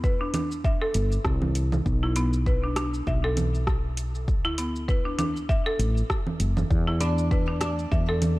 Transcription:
Already playing: fretless electric bass E2
0.04 marimba B4, kick, shaker
0.21 marimba D4
0.34 marimba D4, closed hi-hat, low conga, shaker
0.52 shaker
0.64 marimba E5, kick, shaker
0.82 marimba A4
0.94 fretless electric bass G1, closed hi-hat, shaker
1.12 shaker
1.25 fretless electric bass C2, kick, cross-stick, shaker
1.42 low conga
1.55 closed hi-hat, shaker
1.72 low conga, shaker
1.86 fretless electric bass B1, kick, shaker
2.03 marimba E4
2.16 marimba B3, closed hi-hat, shaker
2.33 shaker
2.46 marimba B4, kick, shaker
2.64 marimba D4
2.76 marimba D4, cross-stick, closed hi-hat, shaker
2.94 shaker
3.07 fretless electric bass B1, marimba E5, kick, shaker
3.24 marimba A4
3.37 closed hi-hat, low conga, shaker
3.55 shaker
3.67 kick, cross-stick, shaker
3.97 closed hi-hat, shaker
4.15 shaker
4.28 kick, shaker
4.45 fretless electric bass D2, marimba E4
4.58 marimba B3, closed hi-hat, shaker
4.76 shaker
4.88 marimba B4, kick, shaker
5.05 marimba D4
5.19 marimba D4, closed hi-hat, low conga, shaker
5.36 shaker
5.49 marimba E5, kick, shaker
5.66 marimba A4
5.79 fretless electric bass A1, closed hi-hat, shaker
5.97 shaker
6.10 kick, cross-stick, shaker
6.27 low conga
6.40 fretless electric bass F#1, closed hi-hat, shaker
6.57 low conga, shaker
6.70 fretless electric bass E2, kick, shaker
6.87 marimba E4
7.00 marimba B3, oud D4, closed hi-hat, shaker
7.18 shaker
7.31 marimba B4, kick, shaker
7.48 marimba D4
7.61 oud D4, marimba D4, cross-stick, closed hi-hat, shaker
7.79 shaker
7.92 fretless electric bass E2, marimba E5, kick, shaker
8.09 marimba A4
8.22 closed hi-hat, low conga, shaker

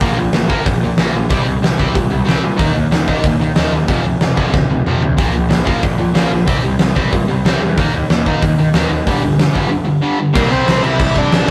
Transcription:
0.01 picked electric bass A#1, distorted electric guitar A#2 F3 A#3, kick
0.17 picked electric bass A#1, distorted electric guitar A#2 F3
0.33 picked electric bass A#1, distorted electric guitar A#2 F3, snare, open hi-hat
0.49 distorted electric guitar A#2 F3 A#3, kick
0.66 picked electric bass A#1, distorted electric guitar A#2 F3, kick, open hi-hat
0.81 picked electric bass A#2, distorted electric guitar A#2 F3
0.97 picked electric bass A#1, distorted electric guitar A#2 F3 A#3, snare, open hi-hat
1.14 picked electric bass A#1, distorted electric guitar A#2 F3
1.29 picked electric bass C2, distorted electric guitar C3 G3 C4, kick, open hi-hat
1.45 picked electric bass C2, distorted electric guitar C3 G3
1.61 picked electric bass C2, distorted electric guitar C3 G3, snare, open hi-hat
1.77 picked electric bass C2, distorted electric guitar C3 G3 C4, kick
1.94 picked electric bass A#2, distorted electric guitar C3 G3, kick, open hi-hat
2.10 picked electric bass C2, distorted electric guitar C3 G3
2.25 picked electric bass C2, distorted electric guitar C3 G3 C4, snare, open hi-hat
2.43 picked electric bass A#2, distorted electric guitar C3 G3
2.57 picked electric bass D#2, distorted electric guitar D#3 A#3 D#4, kick, open hi-hat
2.74 picked electric bass D#2, distorted electric guitar D#3 A#3
2.91 picked electric bass D#2, distorted electric guitar D#3 A#3, snare, open hi-hat
3.08 distorted electric guitar D#3 A#3 D#4, kick
3.24 picked electric bass D#2, distorted electric guitar D#3 A#3, kick, open hi-hat
3.40 picked electric bass D#3, distorted electric guitar D#3 A#3
3.56 picked electric bass D#2, distorted electric guitar D#3 A#3 D#4, snare, open hi-hat
3.71 picked electric bass D#2, distorted electric guitar D#3 A#3
3.88 picked electric bass F1, distorted electric guitar F2 C3 F3, kick, open hi-hat
4.05 picked electric bass F1, distorted electric guitar F2 C3
4.20 picked electric bass F1, distorted electric guitar F2 C3, snare, open hi-hat
4.35 picked electric bass F1, distorted electric guitar F2 C3 F3, kick
4.52 picked electric bass D2, distorted electric guitar F2 C3, kick, snare
4.69 picked electric bass F1, distorted electric guitar F2 C3, high tom
4.85 picked electric bass F1, distorted electric guitar F2 C3 F3, mid tom
5.01 picked electric bass D2, distorted electric guitar F2 C3, floor tom
5.17 picked electric bass A#1, distorted electric guitar A#2 F3 A#3, kick, open hi-hat
5.33 picked electric bass A#1, distorted electric guitar A#2 F3
5.49 picked electric bass A#1, distorted electric guitar A#2 F3, snare, open hi-hat
5.65 distorted electric guitar A#2 F3 A#3, kick
5.81 picked electric bass A#1, distorted electric guitar A#2 F3, kick, open hi-hat
5.98 distorted electric guitar A#2 F3, picked electric bass A#2
6.14 picked electric bass A#1, distorted electric guitar A#2 F3 A#3, snare, open hi-hat
6.30 picked electric bass A#1, distorted electric guitar A#2 F3
6.47 picked electric bass C2, distorted electric guitar C3 G3 C4, kick, open hi-hat
6.63 picked electric bass C2, distorted electric guitar C3 G3
6.79 picked electric bass C2, distorted electric guitar C3 G3, snare, open hi-hat
6.95 picked electric bass C2, distorted electric guitar C3 G3 C4, kick
7.12 picked electric bass A#2, distorted electric guitar C3 G3, kick, open hi-hat
7.28 picked electric bass C2, distorted electric guitar C3 G3
7.44 picked electric bass C2, distorted electric guitar C3 G3 C4, snare, open hi-hat
7.61 picked electric bass E2, distorted electric guitar C3 G3
7.77 picked electric bass D#2, distorted electric guitar D#3 A#3 D#4, kick, open hi-hat
7.93 picked electric bass D#2, distorted electric guitar D#3 A#3
8.10 picked electric bass D#2, distorted electric guitar D#3 A#3, snare, open hi-hat
8.26 distorted electric guitar D#3 A#3 D#4, kick
8.42 picked electric bass D#2, distorted electric guitar D#3 A#3, kick, open hi-hat
8.58 picked electric bass D#3, distorted electric guitar D#3 A#3
8.74 picked electric bass D#2, distorted electric guitar D#3 A#3 D#4, snare, open hi-hat
8.90 picked electric bass D#2, distorted electric guitar D#3 A#3
9.06 picked electric bass G1, distorted electric guitar G2 D3 G3, kick, open hi-hat
9.22 picked electric bass G1, distorted electric guitar G2 D3
9.38 picked electric bass G1, distorted electric guitar G2 D3, snare, open hi-hat
9.53 picked electric bass G1, distorted electric guitar G2 D3 G3, kick
9.70 distorted electric guitar G2 D3
9.85 distorted electric guitar G2 D3
10.02 distorted electric guitar G2 D3 G3
10.19 distorted electric guitar G2 D3
10.34 picked electric bass C2, distorted electric guitar C3 G3 C4, lead electric guitar A#3 A#4, kick, crash
10.49 picked electric bass C2, lead electric guitar C4 C5, crash
10.67 picked electric bass C2, snare, crash
10.83 picked electric bass C3, lead electric guitar E4 E5, crash
11.00 picked electric bass C2, kick, crash
11.15 picked electric bass C2, lead electric guitar D4 D5, kick, crash
11.31 picked electric bass A#1, snare, crash
11.46 distorted electric guitar G3 C4

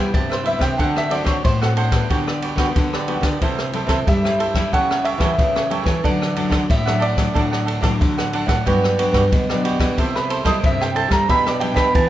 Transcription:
Already playing: nylon-string guitar C3 G3 B3 E4, mandolin G#5
0.14 nylon-string guitar G2 C3, mandolin A5, kick, ride
0.30 cavaquinho B4 C5 E5, mandolin C5, cross-stick
0.43 nylon-string guitar G3 B3 E4, cavaquinho E4 B4 C5 E5, mandolin E5, ride
0.59 nylon-string guitar C3, cavaquinho B4 C5 E5, mandolin G5, kick, cross-stick, ride
0.77 nylon-string guitar D3 A3 C4 F#4, cavaquinho D4 A4 C5 F#5, mandolin F#5, kick, ride
0.96 mandolin E5, cross-stick
1.10 nylon-string guitar A3 C4 F#4, cavaquinho D4 A4 C5 F#5, mandolin D5, ride
1.24 nylon-string guitar D3, cavaquinho D4 A4 C5 F#5, mandolin C#5, kick, cross-stick, ride
1.44 nylon-string guitar A2, mandolin C5, kick, ride
1.61 nylon-string guitar A3 C4 F#4, mandolin A4, cavaquinho A4 C5 F#5, cross-stick
1.76 cavaquinho D4 A4 C5 F#5, ride
1.92 nylon-string guitar G3 B3 F#4, kick, cross-stick, ride
2.10 nylon-string guitar D3, cavaquinho F#4 G4 B4 D5, kick, ride
2.27 cavaquinho G4 B4 D5, cross-stick
2.42 cavaquinho F#4 G4 B4 D5, ride
2.55 nylon-string guitar D3 G3 B3 F#4, cavaquinho F#4 G4 B4, kick, cross-stick, ride
2.60 cavaquinho D5
2.76 nylon-string guitar D3, kick, ride
2.93 cavaquinho G4 B4 D5, cross-stick
3.07 nylon-string guitar G3 B3 F#4, cavaquinho F#4 G4 B4 D5, ride
3.21 nylon-string guitar D3, cavaquinho G4 B4 D5, kick, cross-stick, ride
3.41 nylon-string guitar C3 G3 A3 E4, cavaquinho E4 A4 C5 E5, kick, ride
3.59 cross-stick
3.73 nylon-string guitar G3 A3 E4, cavaquinho E4 A4 C5 E5, ride
3.87 nylon-string guitar C3, cavaquinho E4 A4 C5 E5, kick, cross-stick, ride
4.07 nylon-string guitar G2 G3, mandolin E5, kick, ride
4.24 nylon-string guitar G3 A3 E4, cavaquinho A4 C5 E5, cross-stick
4.39 cavaquinho E4 A4 C5 E5, ride
4.55 nylon-string guitar G3 A3 E4, kick, cross-stick, ride
4.72 nylon-string guitar C#3, cavaquinho G4 A4 C#5 E5, mandolin F#5, kick, ride
4.90 cavaquinho A4 C#5 E5, cross-stick
5.04 cavaquinho G4 A4 C#5 E5, mandolin E5, ride
5.18 nylon-string guitar E3 G3, cavaquinho G4 A4 C#5 E5, kick, cross-stick, ride
5.22 nylon-string guitar A3 E4
5.39 nylon-string guitar C#3, kick, ride
5.55 cavaquinho A4 C#5 E5, cross-stick
5.70 nylon-string guitar G3 A3 E4, cavaquinho G4 A4 C#5 E5, ride
5.84 nylon-string guitar E3, cavaquinho A4 C#5 E5, kick, cross-stick, ride
6.03 nylon-string guitar D3 F#3 A3 D4, cavaquinho D4 A4 D5 F#5, mandolin D5, kick, ride
6.22 cross-stick
6.35 nylon-string guitar F#3 A3 D4, cavaquinho D4 A4 D5 F#5, ride
6.49 nylon-string guitar D3, cavaquinho D4 A4 D5 F#5, kick, cross-stick, ride
6.70 nylon-string guitar A2, mandolin E5, kick, ride
6.86 nylon-string guitar F#3 A3 D4, cavaquinho A4 D5 F#5, cross-stick
6.99 cavaquinho D4 A4 D5 F#5, mandolin D5, ride
7.17 nylon-string guitar F#3 A3 D4, kick, cross-stick, ride
7.34 nylon-string guitar A2 D3 F#3 A3 D4, cavaquinho D4 A4 D5 F#5, kick, ride
7.51 cavaquinho A4 D5 F#5, cross-stick
7.65 cavaquinho D4 A4 D5 F#5, ride
7.81 nylon-string guitar A2 F#3 A3 D4, cavaquinho D4 A4 D5 F#5, kick, cross-stick, ride
8.01 nylon-string guitar A2 D3, kick, ride
8.18 cavaquinho A4 D5 F#5, cross-stick
8.33 nylon-string guitar F#3 A3 D4, cavaquinho D4 A4 D5 F#5, ride
8.46 nylon-string guitar A2, cavaquinho A4 D5 F#5, kick, cross-stick, ride
8.65 nylon-string guitar G2 F#3 B3 D4, cavaquinho F#4 G4 B4 D5, kick, ride
8.84 cross-stick
8.98 nylon-string guitar F#3 B3 D4, cavaquinho F#4 G4 B4 D5, ride
9.12 nylon-string guitar G2, cavaquinho F#4 G4 B4 D5, kick, cross-stick, ride
9.32 nylon-string guitar B2 D3, kick, ride
9.49 nylon-string guitar F#3 B3 D4, cavaquinho G4 B4 D5, cross-stick
9.64 cavaquinho F#4 G4 B4 D5, ride
9.79 nylon-string guitar G3 A3 E4, kick, cross-stick, ride
9.96 nylon-string guitar C3, cavaquinho E4 A4 C5 E5, kick, ride
10.15 cavaquinho A4 C5 E5, mandolin B4, cross-stick
10.29 cavaquinho E4 A4 C5 E5, mandolin C5, ride
10.43 nylon-string guitar G3 A3 E4, cavaquinho E4 A4 C5 E5, mandolin D#5, kick, cross-stick, ride
10.63 nylon-string guitar G2 C3, mandolin E5, kick, ride
10.80 cavaquinho A4 C5 E5, mandolin G5, cross-stick
10.95 nylon-string guitar G3 A3 E4, cavaquinho E4 A4 C5 E5, mandolin A5, ride
11.08 nylon-string guitar G3, cavaquinho A4 C5 E5, mandolin A#5, kick, cross-stick, ride
11.28 nylon-string guitar B2 G3 D4 E4, cavaquinho D4 G4 B4 E5, mandolin B5, kick, ride
11.46 mandolin D5, cross-stick
11.59 nylon-string guitar G3 D4 E4, cavaquinho D4 G4 B4 E5, mandolin G5, ride
11.74 nylon-string guitar B2, cavaquinho D4 G4 B4 E5, mandolin B5, kick, cross-stick, ride
11.95 nylon-string guitar B2 E3, mandolin A5, kick, ride

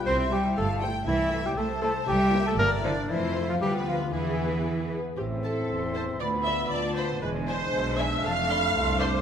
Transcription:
Already playing: french horn section G3, harp G4 G5
0.05 double bass section C2, harp C3, cello section C4, french horn section E4, clarinet C5, violin section E5, flute section C6, celesta C6
0.18 harp C4
0.31 viola section G3 E4, cello section G3, harp G4, clarinet G4, violin section C5, flute section G5, celesta G5
0.43 harp E5
0.56 double bass section G1, cello section A3, clarinet A4, violin section F5, harp G5, flute section A5, celesta A5
0.69 harp E5
0.82 viola section G3 E4, harp C5, violin section C5 G5
0.94 harp E4
1.06 double bass section C2, harp C3, cello section E3, clarinet E4, violin section E5, flute section E5, celesta E5
1.19 harp C4
1.32 french horn section A3 E4, viola section A3 E4, harp A4, violin section C5
1.45 cello section G3, clarinet G4, harp E5, flute section G5, celesta G5
1.56 double bass section C2, cello section A3, clarinet A4, violin section C5, harp A5, flute section A5, celesta A5
1.70 harp E5
1.82 french horn section A3 E4, cello section A3, viola section A3 E4, clarinet A4, harp C5, violin section C5, flute section A5, celesta A5
1.95 harp E4
2.07 double bass section C2, harp C3, cello section G3, clarinet G4, violin section E5, flute section G5, celesta G5
2.20 harp C4
2.33 french horn section A#3 E4, viola section A#3 E4, harp A#4, violin section C5
2.46 cello section A3, clarinet A4, harp E5, celesta A5, flute section A5
2.58 double bass section G1, cello section A#3, clarinet A#4, violin section D5, harp A#5, flute section A#5
2.71 harp E5
2.83 cello section D3, viola section A#3 E4, french horn section A#3 E4, clarinet D4, harp C5, violin section C5, celesta D5, flute section D5
2.96 harp E4
3.09 double bass section F2, cello section E3, harp F3, viola section A3 F4, clarinet E4, violin section C5, celesta E5, flute section E5
3.21 harp F4
3.35 french horn section A3 F4, harp C5
3.48 cello section F3, clarinet F4, celesta F5, flute section F5, harp A5
3.61 double bass section D2, harp D3, cello section G3, viola section B3 F4, clarinet G4, violin section B4, celesta G5, flute section G5
3.74 harp B3
3.86 cello section F3, french horn section B3 F4, clarinet F4, harp B4, celesta F5, flute section F5
4.00 harp F5
4.12 double bass section E2, harp E3, cello section E3, viola section B3 G#4, clarinet E4, violin section G#4 B4, celesta E5, flute section E5
4.26 harp B3
4.39 french horn section B3 G#4, harp B4
4.52 harp G#5
4.66 harp B5
4.79 harp G#5
4.91 french horn section B3 G#4, harp B4
5.04 harp G#4
5.17 double bass section A1, harp A2, cello section A2, french horn section C4 E4, bassoon C4, viola section G4, clarinet E5
5.35 harp C4
5.43 violin section C4 C5 A5, viola section A4
5.52 harp E4
5.69 double bass section E1, cello section E2, harp A4, flute section C6
5.87 harp C5
5.94 violin section C4 C5 A5, viola section C5
6.03 harp A4
6.19 double bass section D2, cello section D2, harp D3, french horn section B3 F4, bassoon B3, clarinet F4, viola section D5, flute section B5
6.37 harp D4
6.45 violin section F4 D5 B5, viola section E5
6.55 harp F4
6.71 double bass section D2, cello section D2, harp B4, viola section D5, flute section A5
6.89 harp D5
6.96 violin section F4 D5 B5, viola section C5
7.06 harp B4
7.22 double bass section E1, cello section E2, harp E2, french horn section G#3 D4, bassoon G#3, clarinet D4, viola section B4, flute section G#5
7.40 harp D4
7.47 violin section E4 D5 G#5, viola section C5
7.56 harp E4
7.72 double bass section B1, cello section B2, harp G#4, flute section E5
7.90 harp D5
7.98 violin section E4 D5 G#5, viola section E5, flute section G#5
8.07 harp G#4
8.24 double bass section F1, cello section F2, harp F2, bassoon A3, french horn section A3, viola section F5, flute section A5
8.41 harp D4
8.49 violin section A4 D5 C6, flute section B5
8.58 harp A4
8.74 cello section C2, double bass section C2, harp C5, flute section C6
8.92 harp D5
9.00 violin section A4 D5 C6, viola section C5, flute section D6
9.08 harp C5

